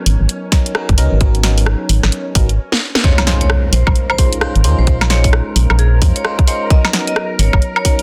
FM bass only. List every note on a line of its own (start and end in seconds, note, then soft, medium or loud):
0.06 0.17 G#1 loud
0.20 0.27 G#1 medium
0.89 0.99 F#1 medium
0.98 1.08 C#2 loud
1.12 1.75 G#1 medium
1.89 2.00 G#1 loud
2.04 2.10 G#1 medium
2.35 2.58 G#1 medium
3.73 3.83 A#1 loud
3.87 3.93 A#1 medium
4.56 4.66 G#1 medium
4.64 4.75 D#2 loud
4.78 5.41 A#1 medium
5.56 5.66 A#1 loud
5.70 6.03 A#1 medium
6.02 6.12 F2 loud
7.39 7.50 G#1 loud
7.53 7.60 G#1 medium